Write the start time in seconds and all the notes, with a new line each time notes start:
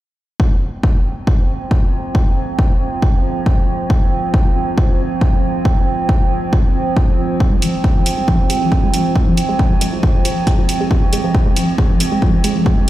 0.40 F3 C4, kick
0.83 kick
1.27 kick
1.71 kick
2.15 kick
2.59 kick
3.02 kick
3.46 kick
3.90 kick
4.34 kick
4.78 kick
5.21 kick
5.65 kick
6.09 kick
6.53 kick
6.97 kick
7.40 kick
7.52 G#3
7.62 F3, open hi-hat
7.84 G#3, kick
7.96 F3
8.06 open hi-hat
8.17 G#3
8.28 F3, kick
8.50 G#3, open hi-hat
8.61 F3
8.72 kick
8.83 G#3
8.94 F3, open hi-hat
9.16 G#3, kick
9.27 F3
9.37 open hi-hat
9.49 G#3
9.59 F3, kick
9.81 G#3, open hi-hat
9.93 F3
10.03 kick
10.14 G#3
10.25 F3, open hi-hat
10.47 G#3, kick, open hi-hat
10.58 F3
10.69 open hi-hat
10.80 G#3
10.91 F3, kick
11.13 G#3, open hi-hat
11.24 F3
11.35 kick
11.46 G#3
11.56 F3, open hi-hat
11.78 G#3, kick
11.90 F3
12.00 open hi-hat
12.12 G#3
12.22 F3, kick
12.44 G#3, open hi-hat
12.55 F3
12.66 kick
12.77 G#3